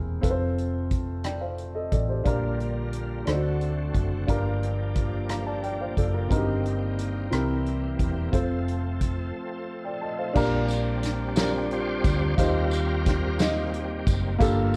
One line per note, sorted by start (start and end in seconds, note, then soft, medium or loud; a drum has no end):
0.00 0.21 E1 medium
0.00 0.19 C3 medium
0.00 0.21 A#3 medium
0.00 2.22 C4 medium
0.00 0.22 E4 soft
0.00 0.25 E4 medium
0.00 0.22 G#4 medium
0.00 0.25 G#4 soft
0.00 0.25 A#4 soft
0.00 0.25 C5 medium
0.21 1.88 F1 medium
0.21 2.23 A3 medium
0.21 1.03 C4 medium
0.21 1.03 F4 medium
0.21 3.24 F4 medium
0.21 1.04 A4 medium
0.21 2.23 A4 medium
0.21 0.30 B4 medium
0.21 kick medium
0.21 closed hi-hat medium
0.30 1.07 C5 medium
0.58 closed hi-hat soft
0.91 kick medium
0.91 closed hi-hat medium
1.24 1.41 D5 soft
1.24 1.40 G5 soft
1.24 cross-stick medium
1.24 closed hi-hat medium
1.41 1.73 C5 soft
1.41 1.73 F5 soft
1.58 closed hi-hat soft
1.74 1.90 A4 soft
1.74 1.91 D#5 medium
1.92 2.23 A1 medium
1.92 2.08 A4 soft
1.92 2.08 D5 soft
1.92 kick medium
1.92 closed hi-hat soft
2.09 2.24 G4 soft
2.09 2.41 C5 soft
2.24 3.23 A#1 medium
2.24 3.23 A#2 soft
2.24 3.26 D3 medium
2.24 3.26 G3 soft
2.24 3.26 A#3 soft
2.24 3.26 A#3 medium
2.24 3.05 D4 medium
2.24 6.27 D4 medium
2.24 3.06 F4 medium
2.24 3.26 F4 medium
2.24 3.26 G4 medium
2.24 3.06 G4 medium
2.24 3.07 A#4 medium
2.24 kick medium
2.24 closed hi-hat medium
2.60 closed hi-hat soft
2.93 closed hi-hat medium
3.26 3.91 D2 medium
3.26 4.24 D3 medium
3.26 4.28 D3 soft
3.26 4.27 A3 medium
3.26 4.28 A3 soft
3.26 4.27 C4 soft
3.26 4.28 C4 soft
3.26 4.07 D4 medium
3.26 3.33 D#4 soft
3.26 4.27 F#4 medium
3.26 4.08 A4 soft
3.26 4.08 C5 medium
3.26 cross-stick medium
3.26 closed hi-hat medium
3.33 4.11 F#4 soft
3.61 closed hi-hat soft
3.94 4.25 F#1 medium
3.94 kick medium
3.94 closed hi-hat soft
4.27 5.93 G1 medium
4.27 5.25 G2 medium
4.27 6.29 F3 soft
4.27 6.29 G3 medium
4.27 7.29 A#3 medium
4.27 6.30 A#3 soft
4.27 5.08 D4 medium
4.27 6.30 D4 medium
4.27 5.08 F4 medium
4.27 6.29 F4 medium
4.27 5.09 G4 medium
4.27 8.30 G4 medium
4.27 5.09 A#4 medium
4.27 kick medium
4.27 closed hi-hat medium
4.63 closed hi-hat soft
4.95 kick medium
4.95 cross-stick soft
4.95 closed hi-hat medium
5.29 5.46 F5 soft
5.29 5.46 A#5 soft
5.29 cross-stick medium
5.29 closed hi-hat medium
5.47 5.62 D5 soft
5.47 5.62 A5 medium
5.63 5.80 D5 soft
5.63 5.79 G5 medium
5.63 closed hi-hat soft
5.81 5.97 C5 soft
5.81 5.96 F5 medium
5.97 6.28 F#1 medium
5.97 6.13 A4 soft
5.97 6.13 D5 medium
5.97 kick medium
5.97 closed hi-hat soft
6.14 6.46 F4 soft
6.14 6.30 A#4 soft
6.29 7.28 G1 medium
6.29 7.27 G2 medium
6.29 7.31 D#3 medium
6.29 8.32 G3 medium
6.29 8.31 A#3 soft
6.29 7.10 C4 medium
6.29 8.31 C4 medium
6.29 10.32 C4 medium
6.29 7.11 D#4 medium
6.29 7.31 D#4 medium
6.29 6.37 F#4 medium
6.29 7.12 A#4 medium
6.29 kick medium
6.29 closed hi-hat medium
6.37 7.14 G4 medium
6.66 closed hi-hat soft
6.99 cross-stick soft
6.99 closed hi-hat medium
7.30 7.95 C2 medium
7.30 8.29 C3 medium
7.30 8.32 E3 medium
7.30 8.32 A#3 medium
7.30 8.12 C4 medium
7.30 8.12 E4 medium
7.30 8.32 E4 medium
7.30 8.13 G4 soft
7.30 8.13 A#4 medium
7.30 cross-stick medium
7.30 closed hi-hat medium
7.66 closed hi-hat soft
7.99 8.31 E1 medium
7.99 kick medium
7.99 closed hi-hat medium
8.32 9.30 F1 medium
8.32 10.34 F3 medium
8.32 10.34 F3 soft
8.32 10.34 A3 soft
8.32 10.34 A3 medium
8.32 9.13 C4 medium
8.32 10.34 C4 medium
8.32 9.13 F4 medium
8.32 10.34 F4 medium
8.32 9.14 A4 medium
8.32 10.34 A4 medium
8.32 9.14 C5 medium
8.32 kick medium
8.32 closed hi-hat medium
8.68 closed hi-hat soft
9.01 kick medium
9.01 cross-stick soft
9.01 closed hi-hat medium
9.84 10.01 D5 soft
9.84 10.01 G5 soft
10.01 10.18 D#5 soft
10.01 10.18 A5 medium
10.18 10.51 C5 soft
10.18 10.51 F5 soft
10.34 12.00 A#1 loud
10.34 11.32 A#2 medium
10.34 12.34 G3 medium
10.34 12.35 C4 medium
10.34 11.15 D4 medium
10.34 12.35 D4 medium
10.34 11.16 F4 medium
10.34 11.16 G4 medium
10.34 11.17 A#4 loud
10.34 kick medium
10.34 crash medium
10.34 tambourine medium
10.68 closed hi-hat soft
10.68 tambourine medium
11.03 snare soft
11.03 closed hi-hat medium
11.35 11.42 C4 soft
11.35 12.17 F4 medium
11.35 12.17 G4 soft
11.35 12.18 A#4 medium
11.35 11.51 D5 loud
11.35 snare medium
11.35 closed hi-hat medium
11.35 tambourine medium
11.42 12.20 D4 medium
11.71 12.35 F4 medium
11.71 12.35 G4 medium
11.71 12.41 C5 loud
11.71 closed hi-hat soft
12.04 12.35 D2 medium
12.04 kick loud
12.04 closed hi-hat medium
12.04 tambourine medium
12.37 14.03 D#2 loud
12.37 13.35 D#3 medium
12.37 14.36 G3 medium
12.37 13.40 C4 soft
12.37 13.18 D#4 medium
12.37 13.18 F4 medium
12.37 12.72 F4 medium
12.37 13.19 G4 medium
12.37 12.72 G4 medium
12.37 12.72 A#4 medium
12.37 13.19 C5 medium
12.37 kick loud
12.37 closed hi-hat medium
12.37 tambourine medium
12.71 13.70 F4 medium
12.71 13.41 G4 medium
12.71 13.42 A#4 loud
12.71 closed hi-hat medium
12.71 tambourine medium
13.06 kick medium
13.06 snare soft
13.06 closed hi-hat medium
13.38 14.38 A#3 medium
13.38 14.37 C4 medium
13.38 14.19 D#4 medium
13.38 14.19 F4 medium
13.38 14.20 G4 medium
13.38 14.21 D#5 medium
13.38 snare medium
13.38 closed hi-hat medium
13.38 tambourine medium
13.42 14.13 G4 medium
13.74 closed hi-hat soft
14.07 14.38 F#1 medium
14.07 kick medium
14.07 closed hi-hat medium
14.07 tambourine soft
14.39 14.77 G1 loud
14.39 14.77 G2 medium
14.39 14.77 A#3 medium
14.39 14.77 F4 medium
14.39 14.77 G4 medium
14.39 14.77 A4 medium
14.39 14.77 A4 loud
14.39 kick loud
14.39 closed hi-hat medium
14.39 tambourine medium